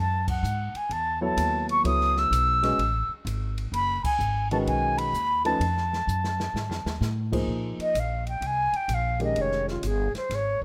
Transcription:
Already playing: upright bass F#2
0.00 flute A5
0.28 flute F#5, kick, crash
0.43 upright bass G#2, hi-hat pedal
0.74 flute G#5, muted upright bass stroke, ride
0.90 upright bass E2, flute A5, ride
1.21 grand piano F#3 B3 E4 A4 C#5, flute A5
1.37 upright bass D#2, hi-hat pedal, ride
1.69 flute C#6, ride
1.84 upright bass C#2, grand piano F#3 B3 E4 A4 C#5, flute D#6, ride
2.01 snare
2.17 flute E6, snare
2.31 upright bass B1, hi-hat pedal, ride
2.63 grand piano G#3 C#4 F#4 B4 D#5, snare, ride
2.78 upright bass A1, ride
3.09 muted upright bass stroke
3.25 upright bass G#1, hi-hat pedal, ride
3.58 ride
3.72 upright bass F#1, flute B5, ride
4.04 flute G#5, muted upright bass stroke, kick, crash
4.19 upright bass G#1, hi-hat pedal
4.51 grand piano D#3 G#3 C#4 F#4 B4, flute A5, ride
4.66 upright bass B1, flute G#5, ride
4.98 flute B5, ride
5.13 upright bass D#2, hi-hat pedal
5.45 grand piano F3 A3 C#4 D#4 B4, flute A5, ride
5.60 upright bass F2, ride
5.77 snare
5.93 snare
6.07 upright bass F#2, hi-hat pedal
6.24 snare
6.40 snare
6.54 upright bass G#2, snare
6.69 upright bass F2, snare
6.85 upright bass D#2, snare
7.01 upright bass A2, snare, hi-hat pedal
7.32 grand piano F3 A#3 D#4 G#4 C5, kick, crash
7.48 upright bass A#2
7.79 flute D#5, muted upright bass stroke, ride
7.95 upright bass A#1, hi-hat pedal, ride
7.99 flute F5
8.27 flute G5, ride
8.41 upright bass C2, ride
8.46 flute G#5
8.73 flute G5, muted upright bass stroke, ride
8.88 upright bass A#1, hi-hat pedal, ride
8.94 flute F5
9.20 grand piano D#3 G#3 C#4 G4 A#4, flute D#5, ride
9.36 upright bass F1, ride
9.41 flute C#5
9.52 snare
9.68 flute F4, snare
9.83 upright bass G1, flute G#4, hi-hat pedal, ride
10.14 flute C5, muted upright bass stroke, snare, ride
10.30 upright bass G#1, snare, ride
10.35 flute C#5
10.61 muted upright bass stroke

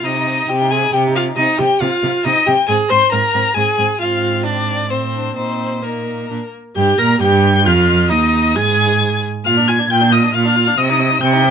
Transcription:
0.04 cello C3, violin C4 D#5, viola D#4
0.16 violin D#4
0.27 violin C4
0.39 violin D#4
0.48 cello C3, violin C4 G5, viola G4
0.61 violin D#4
0.71 violin C4 G#5, viola G#4
0.83 violin D#4
0.93 cello C3, violin C4 G5, viola G4
1.07 violin D#4
1.16 violin C4 F5, viola F4
1.29 violin D#4
1.36 cello C3, violin C4 D#5, viola D#4
1.59 cello C3, violin C4 G5, viola G4
1.81 cello C3, violin C4 F5, viola F4
2.03 cello C3, violin C4
2.24 cello C3, violin C4 D#5, viola D#4
2.46 cello C3, violin C4 G5, viola G4
2.67 cello G#2, violin C4 G#5, viola G#4
2.89 cello G#2, violin C4 C6, viola C5
3.11 cello G#2, violin C4 A#5, viola A#4
3.34 cello G#2, violin C4
3.55 cello G#2, violin C4 G#5, viola G#4
3.78 cello G#2, violin C4
4.00 cello G#2, violin C4 F5, viola F4
4.44 viola D4, violin D5
4.90 cello A2, viola C4, violin C4 C5
5.15 violin D4
5.35 cello A#2, viola C4, violin D#4 C5
5.82 viola A#3, violin D#4 A#4
6.30 cello A#2, violin D4
6.76 cello G2, viola G4, violin G5 G6
6.98 cello A#2, viola A#4, violin A#5 A#6
7.21 cello G2, viola G4, violin G5 G6
7.65 cello F2, viola F4, violin F5 F6
8.10 cello D#2, viola D#4, violin D#5 D#6
8.56 cello G#2, viola G#4, violin G#5 G#6
9.45 cello A#2, viola F4, violin F5 F6
9.57 viola D4
9.68 viola F4, violin G#5 G#6
9.79 viola D4
9.90 cello A#2, viola F4, violin G5 G6
10.01 viola D4
10.12 viola F4, violin D#5 D#6
10.23 viola D4
10.33 cello A#2, viola F4, violin F5 F6
10.45 viola D4
10.56 viola F4
10.67 viola D4
10.77 cello C3, viola C4, violin D#5 D#6
10.90 viola D#4
11.00 viola C4
11.11 viola D#4
11.21 cello C3, viola C4, violin G5 G6
11.33 viola D#4
11.44 viola C4

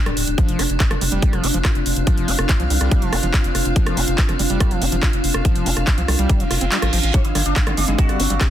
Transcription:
Already playing: analog synth pad D4 G4 G5, synth drone D4
0.06 analog synth bass D1, acid bass G3, cross-stick, closed hi-hat
0.17 analog synth bass D1, open hi-hat
0.27 analog synth bass D1, closed hi-hat
0.38 acid bass F3, analog synth pad C4, kick, closed hi-hat
0.49 analog synth bass F1, closed hi-hat
0.59 analog synth bass F1, acid bass F4, cross-stick, open hi-hat
0.70 analog synth bass F1, analog synth pad F4, closed hi-hat
0.80 acid bass F3, kick, clap, closed hi-hat
0.91 analog synth bass F1, acid bass F3, cross-stick, closed hi-hat
1.01 analog synth bass F1, acid bass G3, open hi-hat
1.12 analog synth bass F1, acid bass G3, closed hi-hat
1.22 kick, closed hi-hat
1.33 analog synth bass F1, acid bass F3, cross-stick, closed hi-hat
1.44 analog synth bass F1, acid bass F4, open hi-hat
1.54 analog synth bass F1, acid bass F3, closed hi-hat
1.60 analog synth pad F5
1.65 acid bass F4, kick, cross-stick, clap, closed hi-hat
1.75 analog synth bass F1, closed hi-hat
1.86 analog synth bass F1, open hi-hat
1.96 analog synth bass F1, closed hi-hat
2.07 acid bass F3, kick, cross-stick, closed hi-hat
2.18 analog synth bass F1, closed hi-hat
2.28 analog synth bass F1, acid bass F4, open hi-hat
2.39 analog synth bass F1, cross-stick, closed hi-hat
2.49 acid bass F3, kick, clap, closed hi-hat
2.60 analog synth bass C2, acid bass F3, closed hi-hat
2.70 analog synth bass C2, acid bass G3, open hi-hat
2.81 analog synth bass C2, acid bass G3, cross-stick, closed hi-hat
2.91 kick, closed hi-hat
3.02 analog synth bass F1, acid bass F3, closed hi-hat
3.13 analog synth bass F1, acid bass F4, cross-stick, open hi-hat
3.23 analog synth bass F1, acid bass F3, closed hi-hat
3.34 acid bass F4, kick, clap, closed hi-hat
3.44 analog synth bass F1, closed hi-hat
3.55 analog synth bass F1, cross-stick, open hi-hat
3.65 analog synth bass F1, closed hi-hat
3.76 acid bass F3, kick, closed hi-hat
3.87 analog synth bass F1, cross-stick, closed hi-hat
3.97 analog synth bass F1, acid bass F4, open hi-hat
4.08 analog synth bass F1, closed hi-hat
4.18 acid bass F3, kick, clap, closed hi-hat
4.29 analog synth bass F1, acid bass F3, cross-stick, closed hi-hat
4.39 analog synth bass F1, acid bass G3, open hi-hat
4.50 analog synth bass F1, acid bass G3, closed hi-hat
4.60 kick, cross-stick, closed hi-hat
4.71 analog synth bass F1, acid bass F3, closed hi-hat
4.82 analog synth bass F1, acid bass F4, open hi-hat
4.86 analog synth pad F5
4.92 analog synth bass F1, acid bass F3, closed hi-hat
5.03 acid bass F4, kick, cross-stick, clap, closed hi-hat
5.13 analog synth bass F1, closed hi-hat
5.24 analog synth bass F1, open hi-hat
5.34 analog synth bass F1, cross-stick, closed hi-hat
5.45 acid bass F3, kick, closed hi-hat
5.56 analog synth bass F1, closed hi-hat
5.66 analog synth bass F1, acid bass F4, open hi-hat
5.77 analog synth bass F1, cross-stick, closed hi-hat
5.87 acid bass F3, kick, clap, closed hi-hat
5.98 analog synth bass C2, acid bass F3, closed hi-hat
6.08 analog synth bass C2, acid bass G3, cross-stick, open hi-hat
6.19 analog synth bass C2, acid bass G3, closed hi-hat
6.29 kick, closed hi-hat, reverse cymbal
6.40 analog synth bass F1, acid bass F3, closed hi-hat
6.51 analog synth bass F1, acid bass F4, cross-stick, open hi-hat
6.61 analog synth bass F1, acid bass C4, closed hi-hat
6.72 acid bass G3, clap, closed hi-hat
6.82 analog synth bass A1, acid bass F3, cross-stick, closed hi-hat
6.93 analog synth bass A1, acid bass F3, open hi-hat
7.03 analog synth bass A1, closed hi-hat
7.14 acid bass G3, synth drone C4, sitar C4, analog synth pad D4, kick, closed hi-hat
7.25 analog synth bass G1, sitar D3, closed hi-hat
7.35 analog synth bass G1, sitar D3, acid bass G3, cross-stick, open hi-hat
7.46 analog synth bass G1, sitar D4, closed hi-hat
7.56 sitar D3, acid bass G3, kick, clap, closed hi-hat
7.67 analog synth bass G1, sitar D3, acid bass G3, cross-stick, closed hi-hat
7.77 analog synth bass G1, acid bass G#3, sitar D4, open hi-hat
7.88 analog synth bass G1, sitar D3, acid bass G#3, closed hi-hat
7.99 sitar F#4, kick, closed hi-hat
8.09 analog synth bass G1, acid bass G3, cross-stick, closed hi-hat
8.20 analog synth bass G1, acid bass G4, open hi-hat
8.30 analog synth bass G1, acid bass G3, closed hi-hat
8.41 acid bass G4, kick, cross-stick, clap, closed hi-hat

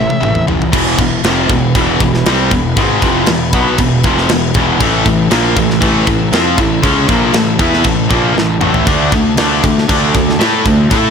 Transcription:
Already playing: distorted electric guitar A2 E3, lead electric guitar E5
0.10 high tom
0.21 picked electric bass A1, distorted electric guitar A2 E3, mid tom
0.35 mid tom
0.47 picked electric bass F1, distorted electric guitar A2 E3, floor tom
0.62 floor tom
0.72 picked electric bass E1, distorted electric guitar E2 B2 E3, string section E4 B4 G#5 B5, kick, crash
0.98 picked electric bass E1, distorted electric guitar E2 B2, kick, crash
1.23 picked electric bass F1, distorted electric guitar F2 C3 F3, snare, crash
1.49 picked electric bass E1, distorted electric guitar E2 B2, kick, crash
1.75 picked electric bass E1, distorted electric guitar E2 B2 E3, kick, crash
2.00 picked electric bass E1, distorted electric guitar E2 B2, kick, crash
2.14 snare
2.26 picked electric bass C2, distorted electric guitar C3 G3 C4, snare, crash
2.51 picked electric bass E1, distorted electric guitar E2 B2, kick, crash
2.76 picked electric bass G#1, distorted electric guitar G#2 D#3 G#3, kick, crash
3.02 picked electric bass F1, distorted electric guitar F2 C3 F3, kick, crash
3.26 picked electric bass E1, distorted electric guitar E2 B2, snare, crash
3.53 picked electric bass B1, distorted electric guitar B2 F#3 B3, kick, crash
3.78 picked electric bass E1, distorted electric guitar E2 B2, kick, crash
4.03 picked electric bass F1, distorted electric guitar F2 C3 F3, kick, crash
4.18 snare
4.29 picked electric bass E1, distorted electric guitar E2 B2, snare, crash
4.54 picked electric bass E1, distorted electric guitar E2 B2 E3, kick, crash
4.80 picked electric bass A1, distorted electric guitar A2 E3 A3, string section A4 A5 E6, kick, crash
5.06 picked electric bass A1, distorted electric guitar A2 E3, kick, crash
5.31 picked electric bass A#1, distorted electric guitar A#2 F3 A#3, snare, crash
5.56 picked electric bass A1, distorted electric guitar A2 E3, kick, crash
5.70 snare
5.81 picked electric bass A1, distorted electric guitar A2 E3 A3, kick, crash
6.07 picked electric bass A1, distorted electric guitar A2 E3, kick, crash
6.33 picked electric bass F2, distorted electric guitar F3 C4 F4, snare, crash
6.58 picked electric bass A1, distorted electric guitar A2 E3, kick, crash
6.82 picked electric bass C#2, distorted electric guitar C#3 G#3 C#4, kick, crash
7.08 picked electric bass A#1, distorted electric guitar A#2 F3 A#3, kick, crash
7.33 picked electric bass A1, distorted electric guitar A2 E3, snare, crash
7.59 picked electric bass E2, distorted electric guitar E3 B3 E4, kick, crash
7.73 snare
7.84 picked electric bass A1, distorted electric guitar A2 E3, kick, crash
8.09 picked electric bass A#1, distorted electric guitar A#2 F3 A#3, kick, crash
8.35 picked electric bass A1, distorted electric guitar A2 E3, snare
8.60 picked electric bass A1, distorted electric guitar A2 E3 A3, mid tom
8.74 floor tom
8.83 picked electric bass D2, distorted electric guitar D3, string section D4 A4 D6, kick, crash
8.87 distorted electric guitar A3 D4
9.12 picked electric bass D2, distorted electric guitar D3 A3, kick, crash
9.36 picked electric bass D2, distorted electric guitar D3 A3 D4, snare, crash
9.63 picked electric bass D2, distorted electric guitar D3 A3, kick, crash
9.78 snare
9.89 picked electric bass D2, distorted electric guitar D3 A3 D4, kick, crash
10.14 picked electric bass D2, distorted electric guitar D3 A3, kick, crash
10.29 snare
10.39 picked electric bass A2, distorted electric guitar A3 E4 A4, snare, crash
10.65 picked electric bass D2, distorted electric guitar D3 A3, kick, crash
10.90 picked electric bass A2, distorted electric guitar A3 E4 A4, string section E4 A5 E6, kick, crash

